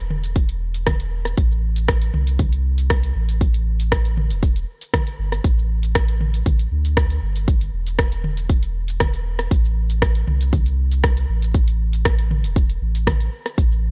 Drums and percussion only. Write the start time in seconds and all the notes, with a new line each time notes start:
0.10 mid tom
0.24 closed hi-hat, shaker
0.36 kick, closed hi-hat, shaker
0.49 closed hi-hat, shaker
0.74 closed hi-hat, shaker
0.87 kick, cross-stick, closed hi-hat, mid tom, shaker
1.00 closed hi-hat, shaker
1.25 cross-stick, closed hi-hat, shaker
1.37 kick, closed hi-hat, shaker
1.51 shaker
1.76 closed hi-hat, shaker
1.88 kick, cross-stick, closed hi-hat, shaker
2.02 closed hi-hat, shaker
2.14 mid tom
2.27 closed hi-hat, shaker
2.39 kick, closed hi-hat, mid tom, shaker
2.52 closed hi-hat, shaker
2.78 closed hi-hat, shaker
2.90 kick, cross-stick, closed hi-hat, shaker
3.03 closed hi-hat, shaker
3.29 closed hi-hat, shaker
3.41 kick, closed hi-hat, shaker
3.54 closed hi-hat, shaker
3.80 closed hi-hat, shaker
3.92 kick, cross-stick, closed hi-hat, shaker
4.05 closed hi-hat, shaker
4.17 mid tom
4.30 closed hi-hat, shaker
4.43 kick, closed hi-hat, shaker
4.56 closed hi-hat, shaker
4.81 closed hi-hat, shaker
4.94 kick, cross-stick, closed hi-hat, mid tom, shaker
5.07 closed hi-hat, shaker
5.32 cross-stick, closed hi-hat, shaker
5.44 kick, closed hi-hat, shaker
5.58 shaker
5.83 closed hi-hat, shaker
5.95 kick, cross-stick, closed hi-hat, shaker
6.08 closed hi-hat, shaker
6.21 mid tom
6.34 closed hi-hat, shaker
6.46 kick, closed hi-hat, mid tom, shaker
6.59 closed hi-hat, shaker
6.85 closed hi-hat, shaker
6.97 kick, cross-stick, closed hi-hat, shaker
7.10 closed hi-hat, shaker
7.36 closed hi-hat, shaker
7.48 kick, closed hi-hat, shaker
7.61 closed hi-hat, shaker
7.87 closed hi-hat, shaker
7.99 kick, cross-stick, closed hi-hat, shaker
8.12 closed hi-hat, shaker
8.24 mid tom
8.37 closed hi-hat, shaker
8.49 kick, closed hi-hat, shaker
8.63 closed hi-hat, shaker
8.88 closed hi-hat, shaker
9.00 kick, cross-stick, closed hi-hat, mid tom, shaker
9.14 closed hi-hat, shaker
9.39 cross-stick, closed hi-hat, shaker
9.51 kick, closed hi-hat, shaker
9.65 shaker
9.90 closed hi-hat, shaker
10.02 kick, cross-stick, closed hi-hat, shaker
10.15 closed hi-hat, shaker
10.27 mid tom
10.41 closed hi-hat, shaker
10.53 kick, closed hi-hat, mid tom, shaker
10.66 closed hi-hat, shaker
10.92 closed hi-hat, shaker
11.04 kick, cross-stick, closed hi-hat, shaker
11.17 closed hi-hat, shaker
11.42 closed hi-hat, shaker
11.54 kick, closed hi-hat, shaker
11.68 closed hi-hat, shaker
11.93 closed hi-hat, shaker
12.05 kick, cross-stick, closed hi-hat, shaker
12.19 closed hi-hat, shaker
12.31 mid tom
12.44 closed hi-hat, shaker
12.56 kick, closed hi-hat, shaker
12.70 closed hi-hat, shaker
12.95 closed hi-hat, shaker
13.07 kick, cross-stick, closed hi-hat, mid tom, shaker
13.20 closed hi-hat, shaker
13.46 cross-stick, closed hi-hat, shaker
13.58 kick, closed hi-hat, shaker
13.72 shaker